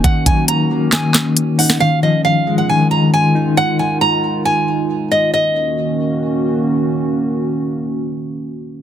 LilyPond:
<<
  \new Staff \with { instrumentName = "Nylon-string guitar" } { \time 4/4 \key ees \minor \tempo 4 = 136 ges''8 aes''8 bes''4 aes''4. ges''8 | f''8 ees''8 f''8. ges''16 aes''8 bes''8 aes''4 | ges''8 aes''8 bes''4 aes''4. ees''8 | ees''2. r4 |
r1 | }
  \new Staff \with { instrumentName = "Analog synth pad" } { \time 4/4 \key ees \minor << { <ees bes ges'>1 | <ees aes f'>1~ | <ees aes f'>1 | <ees bes des' ges'>1~ |
<ees bes des' ges'>1 | } \\ { des'1~ | des'1 | ees'1 | r1 |
r1 | } >> }
  \new Staff \with { instrumentName = "Clean electric guitar" } { \clef bass \time 4/4 \key ees \minor <ees ees'>8 ges4 bes2 ees'8 | ees8 f4 aes8 ees4. ees'8~ | ees'2 r2 | r1 |
r1 | }
  \new DrumStaff \with { instrumentName = "Drums" } \drummode { \time 4/4 <hh bd>8 <hh bd>8 hh4 <hc hh sn>8 <hc hh sn>8 hh8 hho16 sn16 | r4 r4 r4 r4 | r4 r4 r4 r4 | r4 r4 r4 r4 |
r4 r4 r4 r4 | }
>>